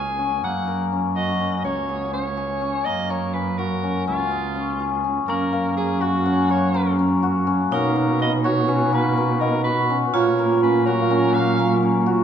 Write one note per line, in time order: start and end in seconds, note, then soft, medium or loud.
0.00 0.44 C#2 medium
0.00 0.43 A#3 medium
0.00 0.18 C#4 soft
0.00 1.16 F#4 medium
0.00 1.88 G#4 medium
0.00 0.67 A#4 medium
0.00 0.40 G#5 medium
0.19 0.92 C#4 medium
0.43 1.66 F#2 medium
0.43 2.86 A#3 medium
0.43 0.86 F#5 medium
0.68 3.10 A#4 medium
0.92 1.40 C#4 soft
1.16 3.58 F#4 medium
1.16 1.61 D#5 medium
1.40 1.64 C#4 medium
1.64 2.87 C#2 medium
1.64 2.13 C#4 medium
1.64 2.10 C#5 medium
1.89 2.37 G#4 medium
2.13 2.61 C#4 soft
2.13 2.86 C#5 medium
2.37 4.31 G#4 medium
2.61 3.34 C#4 medium
2.85 4.09 F#2 medium
2.85 5.28 A#3 medium
2.85 3.12 D#5 medium
3.10 5.52 A#4 medium
3.10 3.35 C#5 medium
3.34 3.83 C#4 soft
3.34 3.60 B4 medium
3.58 6.01 F#4 medium
3.58 4.07 A#4 medium
3.83 4.07 C#4 medium
4.07 5.27 C#2 medium
4.07 4.55 C#4 medium
4.07 5.01 F4 medium
4.31 4.80 G#4 medium
4.55 5.04 C#4 medium
4.80 7.83 G#4 medium
5.04 5.77 C#4 medium
5.28 7.73 F#2 medium
5.28 6.49 A#3 medium
5.28 7.79 C#4 medium
5.28 5.74 A#4 medium
5.53 6.74 A#4 medium
5.53 6.28 F5 soft
5.71 6.43 G#5 soft
5.77 6.25 C#4 medium
5.77 6.02 G#4 medium
6.01 6.50 F#4 medium
6.01 7.22 F#4 medium
6.26 6.98 C#4 medium
6.49 7.71 A#3 medium
6.49 6.96 C#5 medium
6.74 7.95 A#4 medium
6.99 7.46 C#4 medium
7.23 8.44 F#4 medium
7.47 8.68 C#4 medium
7.71 10.15 B2 medium
7.71 8.26 A#3 medium
7.71 9.86 D#4 medium
7.71 8.17 A#4 medium
7.71 8.46 C#5 medium
7.96 8.26 A#4 medium
8.20 8.99 B3 medium
8.20 8.32 D#5 medium
8.44 9.65 F#4 medium
8.44 8.90 C#5 medium
8.68 9.90 C#4 medium
8.93 9.47 A#3 medium
8.93 9.42 B4 medium
9.17 9.47 A#4 medium
9.40 10.20 B3 medium
9.40 9.63 A#4 medium
9.40 10.15 D#5 medium
9.64 10.87 F#4 medium
9.64 9.98 B4 medium
9.90 10.63 C#4 medium
10.12 12.24 A#2 medium
10.12 12.24 F#3 medium
10.12 12.24 A#3 medium
10.12 11.35 A#3 medium
10.12 12.24 F4 medium
10.12 12.24 F4 loud
10.12 10.59 C#5 medium
10.39 11.59 A#4 medium
10.63 11.10 C#4 medium
10.63 10.87 B4 medium
10.86 12.06 F#4 medium
10.86 11.35 A#4 medium
10.86 11.60 C#5 soft
11.02 11.74 F5 soft
11.11 11.82 C#4 medium
11.20 11.89 G#5 soft
11.34 12.24 A#3 medium
11.34 11.82 F5 medium
11.59 12.24 A#4 medium
11.82 12.24 C#4 medium
12.06 12.24 F#4 medium